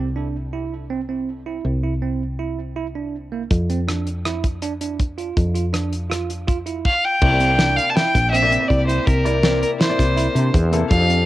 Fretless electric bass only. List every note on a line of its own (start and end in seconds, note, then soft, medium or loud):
0.00 1.61 C2 medium
1.65 3.47 C2 medium
3.51 5.33 F2 medium
5.37 6.82 F2 medium
7.22 7.77 C2 medium
8.15 8.56 A#1 medium
8.70 8.98 C2 medium
9.07 9.62 C2 medium
9.99 10.27 C2 medium
10.35 10.49 C3 medium
10.54 10.82 E2 medium
10.91 11.26 F2 medium